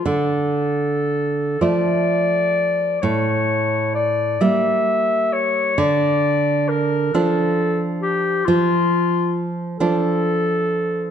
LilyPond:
<<
  \new Staff \with { instrumentName = "Clarinet" } { \time 12/8 \key d \minor \tempo 4. = 44 a'4. d''4. cis''4 d''8 e''4 cis''8 | d''4 bes'8 a'4 g'8 f'4 r8 a'4. | }
  \new Staff \with { instrumentName = "Nylon-string guitar" } { \clef bass \time 12/8 \key d \minor d4. <f a>4. a,4. <g bes>4. | d4. <f d'>4. f4. <f d'>4. | }
>>